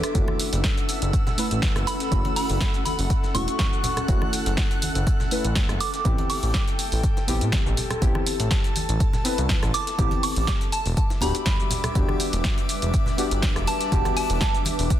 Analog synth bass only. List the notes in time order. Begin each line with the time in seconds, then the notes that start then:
0.15 F#1
0.53 F#1
1.02 F#1
1.51 A1
1.76 F#1
2.12 F#1
2.50 F#1
2.99 F#1
3.35 E1
4.08 F#1
4.46 F#1
4.95 F#1
5.45 A1
5.69 F#1
6.05 A1
6.43 A1
6.92 A1
7.28 A1
7.41 A2
7.66 A1
8.02 A1
8.40 A1
8.89 A1
9.38 C2
9.63 A1
9.99 A1
10.36 A1
10.86 E1
11.22 D1
11.95 E1
12.33 E1
12.82 E1
13.31 G1
13.56 E1
13.92 E1
14.30 E1
14.79 E1